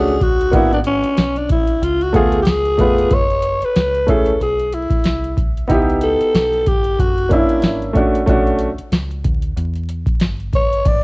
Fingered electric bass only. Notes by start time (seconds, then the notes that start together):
Already playing: C#2
0.53 G#1
1.04 muted fingered electric bass stroke
1.18 B1
1.82 C#2
2.14 D2
2.47 C#2
2.79 F1
3.11 F#1
3.62 muted fingered electric bass stroke
3.76 C#2
4.41 B1
5.05 C2
5.69 C#2
6.21 muted fingered electric bass stroke
6.34 B1
6.67 G1
6.99 F#1
7.63 G#1
8.14 muted fingered electric bass stroke
8.27 B1
8.79 muted fingered electric bass stroke
8.92 C#2
9.24 D2
9.57 E2
10.06 muted fingered electric bass stroke
10.21 G1
10.85 G#1